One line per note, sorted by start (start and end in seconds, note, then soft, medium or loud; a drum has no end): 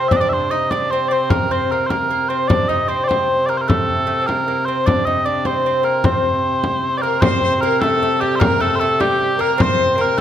0.00 2.48 C3 medium
0.00 0.12 C4 medium
0.08 0.20 D4 medium
0.08 0.12 E5 loud
0.08 frame drum medium
0.12 0.17 D5 loud
0.17 0.21 D#5 medium
0.21 0.51 D4 medium
0.21 0.29 D5 loud
0.29 0.51 C5 medium
0.29 0.33 E5 medium
0.29 frame drum soft
0.51 0.71 D#4 medium
0.51 0.71 D#5 medium
0.51 frame drum soft
0.71 0.92 D4 medium
0.71 0.91 D5 medium
0.71 frame drum medium
0.91 1.10 C4 medium
0.91 1.08 C5 medium
1.08 1.31 C4 medium
1.08 1.12 D5 medium
1.12 1.30 C5 medium
1.30 1.49 A#3 medium
1.30 1.52 A#4 medium
1.30 frame drum medium
1.51 1.71 C4 medium
1.51 1.71 C5 medium
1.71 1.90 A#3 medium
1.71 1.87 A#4 medium
1.87 2.29 A#4 medium
1.87 1.90 C5 medium
1.87 frame drum medium
1.91 2.09 A#3 medium
2.11 2.29 A#3 medium
2.29 2.50 C4 medium
2.29 2.48 C5 medium
2.48 7.21 C3 medium
2.48 2.68 D4 medium
2.48 2.68 D5 medium
2.48 frame drum medium
2.68 2.89 D#4 medium
2.68 2.88 D#5 medium
2.68 frame drum soft
2.88 3.08 C4 medium
2.88 3.04 C5 medium
2.88 frame drum soft
3.04 3.46 C5 medium
3.04 3.08 D5 medium
3.09 3.48 C4 medium
3.09 frame drum medium
3.46 3.68 A#3 medium
3.46 3.58 A#4 medium
3.46 3.49 D5 medium
3.58 3.68 A#4 medium
3.58 3.62 C5 medium
3.68 4.06 A3 medium
3.68 4.27 A4 medium
3.68 frame drum medium
3.90 frame drum soft
4.07 4.21 A3 medium
4.07 frame drum soft
4.22 4.27 C4 soft
4.27 4.47 A#3 medium
4.27 4.66 A#4 medium
4.27 frame drum medium
4.48 4.68 A#3 medium
4.66 4.88 C4 medium
4.66 4.86 C5 medium
4.86 5.05 D4 medium
4.86 5.05 D5 medium
4.86 frame drum medium
5.05 5.25 D#4 medium
5.05 5.26 D#5 medium
5.05 frame drum soft
5.26 5.46 D4 medium
5.26 5.46 D5 medium
5.45 5.64 C4 medium
5.45 5.85 C5 medium
5.45 frame drum medium
5.66 5.83 C4 medium
5.83 6.04 A#3 medium
5.83 6.05 A#4 medium
6.04 6.80 C4 medium
6.04 6.97 C5 medium
6.04 frame drum medium
6.64 frame drum medium
6.97 7.03 C4 medium
6.97 7.02 D5 medium
7.02 7.22 A#3 medium
7.02 7.22 A#4 medium
7.22 10.21 C3 medium
7.22 7.62 C4 medium
7.22 7.61 C5 loud
7.22 7.41 C5 medium
7.22 frame drum medium
7.44 7.53 C5 medium
7.61 7.83 A#3 medium
7.61 7.81 A#4 medium
7.61 7.82 A#4 medium
7.81 8.01 A3 medium
7.81 8.21 A4 loud
7.81 8.23 A4 medium
7.81 frame drum medium
8.02 8.23 A3 medium
8.02 frame drum soft
8.21 8.42 G3 medium
8.21 8.36 G4 medium
8.21 8.41 G4 medium
8.21 frame drum soft
8.36 8.63 A#4 medium
8.36 8.61 A#4 loud
8.36 8.40 C5 loud
8.40 8.60 A#3 medium
8.40 frame drum medium
8.60 8.80 A3 medium
8.60 8.76 A4 medium
8.60 9.02 A4 medium
8.76 8.80 C5 loud
8.80 9.01 A3 medium
8.80 9.01 A4 loud
9.00 9.41 G3 medium
9.00 9.37 G4 medium
9.00 9.41 G4 loud
9.00 frame drum medium
9.21 frame drum soft
9.38 9.58 A#3 medium
9.38 9.57 A#4 medium
9.38 9.62 A#4 loud
9.38 frame drum soft
9.58 9.97 C4 medium
9.58 9.95 C5 loud
9.58 10.01 C5 loud
9.58 frame drum medium
9.98 10.17 A#3 medium
9.98 10.19 A#4 medium
9.98 10.18 A#4 medium
10.18 10.21 A3 medium
10.18 10.21 A4 medium